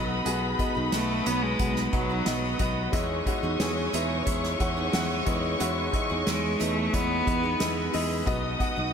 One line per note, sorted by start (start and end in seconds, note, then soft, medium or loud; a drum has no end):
0.00 0.20 B1 loud
0.00 0.24 F#3 medium
0.00 0.25 B3 medium
0.00 0.25 B3 loud
0.00 0.25 D#4 medium
0.00 0.26 F#4 medium
0.00 2.95 A4 loud
0.00 2.89 B4 medium
0.00 8.93 B4 medium
0.00 0.60 D#5 loud
0.00 2.89 D#5 medium
0.00 1.60 F#5 medium
0.00 2.89 F#5 medium
0.00 2.89 B5 loud
0.00 5.56 D#6 medium
0.25 0.53 B1 loud
0.25 1.22 B2 medium
0.25 0.76 F#3 medium
0.25 0.53 B3 loud
0.25 0.76 B3 medium
0.25 0.75 D#4 medium
0.25 0.53 F#4 loud
0.25 0.74 F#4 medium
0.25 0.54 G#4 loud
0.25 closed hi-hat medium
0.58 0.86 B3 medium
0.58 0.86 F#4 medium
0.58 0.87 D#5 medium
0.58 kick medium
0.58 closed hi-hat medium
0.75 0.90 B1 loud
0.75 1.25 B3 medium
0.75 1.25 D#4 medium
0.75 1.26 F#4 medium
0.92 1.20 B1 loud
0.92 1.28 A3 medium
0.92 1.19 B3 medium
0.92 1.20 F#4 medium
0.92 1.20 D#5 medium
0.92 snare loud
0.92 closed hi-hat loud
1.25 1.54 B1 medium
1.25 1.59 B2 medium
1.25 1.58 F#3 medium
1.25 1.53 B3 medium
1.25 1.44 B3 loud
1.25 1.59 B3 medium
1.25 1.59 D#4 loud
1.25 1.54 F#4 medium
1.25 1.60 F#4 medium
1.25 1.54 C#5 medium
1.25 closed hi-hat medium
1.43 1.92 G#3 loud
1.58 1.87 B1 loud
1.58 2.10 F#3 medium
1.58 1.86 B3 medium
1.58 2.10 B3 medium
1.58 2.09 D#4 medium
1.58 1.87 F#4 medium
1.58 2.08 F#4 medium
1.58 1.87 F#5 medium
1.58 kick medium
1.58 closed hi-hat medium
1.76 snare soft
1.91 2.21 B1 loud
1.91 2.55 F#3 medium
1.91 2.20 B3 medium
1.91 2.20 F#4 medium
1.91 2.21 D#5 medium
1.91 kick medium
1.91 closed hi-hat medium
2.09 2.59 B3 soft
2.09 2.60 D#4 medium
2.09 2.60 F#4 medium
2.25 2.54 B1 loud
2.25 2.53 B3 medium
2.25 2.54 F#4 medium
2.25 2.54 D#5 loud
2.25 snare loud
2.25 closed hi-hat medium
2.58 2.87 B1 loud
2.58 2.93 F#3 medium
2.58 2.86 B3 loud
2.58 2.93 B3 medium
2.58 2.93 D#4 medium
2.58 2.87 F#4 medium
2.58 2.94 F#4 medium
2.58 2.87 D#5 loud
2.58 kick medium
2.58 closed hi-hat medium
2.92 3.20 E2 loud
2.92 3.89 E3 medium
2.92 3.43 E3 medium
2.92 3.20 G#3 loud
2.92 3.43 B3 medium
2.92 3.42 D#4 medium
2.92 3.20 E4 loud
2.92 3.42 G#4 medium
2.92 7.23 C#5 medium
2.92 8.23 D#5 medium
2.92 3.21 D#5 loud
2.92 8.23 G#5 medium
2.92 7.23 C#6 loud
2.92 kick loud
2.92 closed hi-hat medium
3.25 3.53 G#3 medium
3.25 3.54 E4 medium
3.25 3.54 F#4 medium
3.25 kick medium
3.25 closed hi-hat medium
3.43 3.57 E2 medium
3.43 3.93 E3 medium
3.43 3.93 B3 medium
3.43 3.93 D#4 medium
3.43 3.93 G#4 medium
3.59 3.87 E2 loud
3.59 3.87 G#3 medium
3.59 3.87 E4 medium
3.59 3.88 G#4 loud
3.59 snare loud
3.59 closed hi-hat loud
3.92 4.27 E2 medium
3.92 4.21 E2 medium
3.92 4.27 B2 medium
3.92 4.25 E3 loud
3.92 4.20 G#3 medium
3.92 4.26 B3 medium
3.92 4.27 D#4 medium
3.92 4.21 E4 medium
3.92 4.27 G#4 loud
3.92 4.21 E5 medium
3.92 closed hi-hat medium
4.26 4.54 E2 loud
4.26 4.77 E3 medium
4.26 4.53 G#3 medium
4.26 4.77 B3 medium
4.26 4.54 E4 medium
4.26 4.75 G#4 medium
4.26 4.54 E5 medium
4.26 kick medium
4.26 closed hi-hat loud
4.43 snare soft
4.59 4.88 E2 medium
4.59 4.87 G#3 medium
4.59 4.87 E4 medium
4.59 4.88 F#5 loud
4.59 kick medium
4.59 closed hi-hat medium
4.77 5.25 E3 soft
4.77 5.26 B3 medium
4.77 5.26 D#4 soft
4.77 5.27 G#4 medium
4.92 5.21 E2 loud
4.92 5.20 G#3 loud
4.92 5.21 E4 loud
4.92 5.21 F#5 loud
4.92 snare loud
4.92 closed hi-hat medium
5.25 5.54 E2 medium
5.25 5.58 E3 medium
5.25 5.53 G#3 loud
5.25 5.59 B3 medium
5.25 5.60 D#4 medium
5.25 5.54 E4 loud
5.25 5.61 G#4 medium
5.25 5.54 D#5 loud
5.25 kick medium
5.25 closed hi-hat medium
5.59 5.88 E2 loud
5.59 6.10 E3 medium
5.59 6.56 E3 medium
5.59 5.87 G#3 loud
5.59 6.10 B3 medium
5.59 6.09 D#4 medium
5.59 5.87 E4 loud
5.59 5.88 F#4 loud
5.59 6.08 G#4 medium
5.59 8.25 C#6 medium
5.59 closed hi-hat loud
5.92 6.20 G#3 medium
5.92 6.21 E4 medium
5.92 6.21 D#5 medium
5.92 kick medium
5.92 closed hi-hat medium
6.10 6.24 E2 medium
6.10 6.59 E3 soft
6.10 6.60 B3 soft
6.10 6.60 D#4 medium
6.10 6.60 G#4 medium
6.25 6.55 E2 loud
6.25 6.53 G#3 medium
6.25 6.62 G#3 medium
6.25 6.54 E4 medium
6.25 6.54 G#4 medium
6.25 snare loud
6.25 closed hi-hat medium
6.59 6.93 E2 medium
6.59 6.88 E2 medium
6.59 6.94 B2 medium
6.59 6.92 E3 medium
6.59 6.87 G#3 medium
6.59 6.95 A3 medium
6.59 6.93 B3 medium
6.59 6.93 D#4 medium
6.59 6.87 E4 medium
6.59 6.94 G#4 loud
6.59 6.88 D#5 medium
6.59 closed hi-hat medium
6.92 7.21 E2 loud
6.92 7.43 E3 medium
6.92 7.20 G#3 medium
6.92 7.94 B3 loud
6.92 7.44 B3 medium
6.92 7.43 D#4 medium
6.92 7.21 E4 medium
6.92 7.42 G#4 medium
6.92 7.21 D#5 medium
6.92 kick medium
6.92 closed hi-hat loud
7.25 7.54 E2 medium
7.25 7.53 G#3 medium
7.25 7.54 E4 medium
7.25 8.25 B4 medium
7.25 7.54 D#5 medium
7.25 8.25 B5 medium
7.25 kick loud
7.25 closed hi-hat medium
7.43 7.92 E3 soft
7.43 7.93 B3 medium
7.43 7.93 D#4 medium
7.43 7.94 G#4 medium
7.59 7.88 E2 medium
7.59 7.87 G#3 medium
7.59 7.87 E4 medium
7.59 7.88 D#5 loud
7.59 snare loud
7.59 closed hi-hat medium
7.92 8.21 E2 medium
7.92 8.26 E3 medium
7.92 8.20 G#3 loud
7.92 8.26 B3 medium
7.92 8.26 D#4 medium
7.92 8.21 E4 loud
7.92 8.28 G#4 medium
7.92 8.21 D#5 loud
7.92 open hi-hat medium
8.26 8.54 B1 loud
8.26 8.93 B2 medium
8.26 8.77 F#3 medium
8.26 8.54 B3 loud
8.26 8.77 B3 medium
8.26 8.76 D#4 medium
8.26 8.54 F#4 medium
8.26 8.75 F#4 medium
8.26 8.93 D#5 medium
8.26 8.55 D#5 loud
8.26 8.93 F#5 medium
8.26 8.93 D#6 medium
8.26 kick loud
8.26 closed hi-hat medium
8.59 8.87 B3 medium
8.59 8.87 F#4 medium
8.59 8.88 F#5 medium
8.59 kick medium
8.59 closed hi-hat medium
8.76 8.91 B1 medium
8.76 8.93 B3 medium
8.76 8.93 D#4 medium
8.76 8.93 F#4 medium